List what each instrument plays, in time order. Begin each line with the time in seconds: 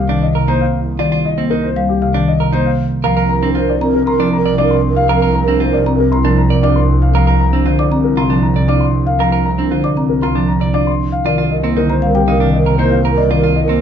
Already playing: double bass section C2, marimba C3, xylophone F5, grand piano F5
0.09 marimba D#3, clean electric guitar D4
0.22 grand piano D#5
0.35 marimba C3, clean electric guitar A#4
0.48 marimba A#3, clean electric guitar D#4, grand piano C5, xylophone A#5
0.61 grand piano F5
0.99 marimba D#3, clean electric guitar F4, grand piano D5
1.12 clean electric guitar F4
1.25 grand piano D#5
1.38 marimba A#3, clean electric guitar C4
1.50 clean electric guitar D#4, grand piano A#4
1.63 grand piano C5
1.76 marimba G3, xylophone F5
1.89 grand piano G4
2.02 marimba C3, grand piano F5, xylophone F5
2.14 marimba D#3, clean electric guitar D4
2.28 grand piano D#5
2.40 marimba C3, clean electric guitar A#4
2.52 marimba A#3, clean electric guitar D#4, grand piano C5, xylophone A#5
2.66 grand piano F5
3.04 double bass section C2, marimba F3, clean electric guitar A#4, alto flute A#4, grand piano F5
3.17 clean electric guitar A#4
3.29 alto flute A#4, grand piano A#5
3.43 clean electric guitar C4, marimba D4
3.55 clean electric guitar F4, alto flute A#4, grand piano C5
3.69 grand piano D5
3.81 marimba C4, alto flute A#4, xylophone A#5
3.95 grand piano A#4
4.07 marimba C3, xylophone A#5, grand piano C6
4.11 alto flute A#4
4.20 marimba F3, clean electric guitar D4
4.33 grand piano A#5
4.37 alto flute A#4
4.45 marimba C3, clean electric guitar D5
4.58 marimba D4, clean electric guitar F4, grand piano D5, xylophone D6
4.64 alto flute A#4
4.71 grand piano C6
4.90 alto flute A#4
4.96 grand piano F5, xylophone F5
5.09 marimba F3, clean electric guitar A#4, grand piano F5
5.16 alto flute A#4
5.22 clean electric guitar A#4
5.35 grand piano A#5
5.43 alto flute A#4
5.48 clean electric guitar C4, marimba D4
5.60 clean electric guitar F4, grand piano C5
5.69 alto flute A#4, grand piano D5
5.86 marimba C4, xylophone A#5
5.96 alto flute A#4, grand piano A#4
6.12 marimba C3, xylophone A#5, grand piano C6
6.23 marimba F3, clean electric guitar D4, alto flute A#4
6.38 grand piano A#5
6.49 marimba C3, alto flute A#4, clean electric guitar D5
6.63 marimba D4, clean electric guitar F4, grand piano D5, xylophone D6
6.75 alto flute A#4, grand piano C6
7.02 grand piano F5, xylophone F5
7.14 marimba F3, clean electric guitar A#4, grand piano F5
7.27 clean electric guitar A#4
7.40 grand piano A#5
7.53 clean electric guitar C4, marimba D4
7.66 marimba D3, clean electric guitar F4, grand piano C5
7.79 grand piano D5, xylophone D6
7.91 marimba C4, xylophone A#5
8.04 grand piano A#4
8.17 marimba C3, clean electric guitar F4, xylophone A#5, grand piano C6
8.30 marimba F3, clean electric guitar D4
8.43 grand piano A#5
8.55 marimba C3, clean electric guitar D5
8.68 marimba D4, clean electric guitar F4, grand piano D5, xylophone D6
8.81 grand piano C6
9.06 grand piano F5, xylophone F5
9.19 marimba F3, clean electric guitar A#4, grand piano F5
9.32 clean electric guitar A#4
9.46 grand piano A#5
9.58 clean electric guitar C4, marimba D4
9.71 marimba D3, clean electric guitar F4, grand piano C5
9.84 grand piano D5, xylophone D6
9.97 marimba C4, xylophone A#5
10.09 grand piano A#4
10.22 marimba C3, clean electric guitar F4, xylophone A#5, grand piano C6
10.35 marimba F3, clean electric guitar D4
10.49 grand piano A#5
10.61 marimba C3, clean electric guitar D5
10.73 marimba D4, clean electric guitar F4, grand piano D5, xylophone D6
10.87 grand piano C6
11.12 grand piano F5, xylophone F5
11.25 double bass section C2, marimba D#3, clean electric guitar F4, alto flute A#4, grand piano D5
11.38 clean electric guitar F4
11.51 alto flute A#4, grand piano D#5
11.64 marimba A#3, clean electric guitar C4
11.76 marimba D3, clean electric guitar D#4, grand piano A#4, alto flute A#4
11.89 grand piano C5, xylophone A#5
12.02 marimba G3, alto flute A#4, xylophone F5
12.15 grand piano G4, xylophone G5
12.28 marimba C3, clean electric guitar D#4, alto flute A#4, xylophone F5, grand piano F5
12.40 marimba D#3, clean electric guitar D4
12.53 grand piano D#5
12.58 alto flute A#4
12.66 marimba C3, clean electric guitar A#4
12.78 marimba A#3, clean electric guitar D#4, grand piano C5, xylophone A#5
12.84 alto flute A#4
12.91 grand piano F5
13.05 clean electric guitar A#4
13.11 alto flute A#4
13.17 grand piano D5, xylophone D#5
13.29 marimba D#3, clean electric guitar F4, grand piano D5
13.37 alto flute A#4
13.44 clean electric guitar F4
13.56 grand piano D#5
13.64 alto flute A#4
13.68 marimba A#3, clean electric guitar C4